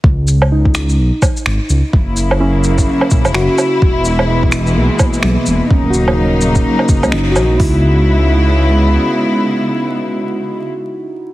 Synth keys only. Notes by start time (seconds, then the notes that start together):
0.52 D#4
2.40 C#4 E4
3.35 F#4
4.29 B3
4.76 A#3
5.71 C#4
5.90 F#4
7.13 D#4
7.32 F#4
7.60 E4